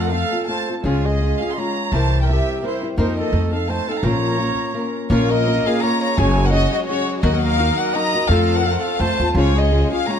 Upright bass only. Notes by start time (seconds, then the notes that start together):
Already playing: F2
0.84 C#2
1.92 C2
2.98 F2
3.33 F2
4.03 A#1
5.10 A#1
6.18 F#1
7.23 D#2
8.29 F2
9.00 F2
9.19 D#2
9.35 C#2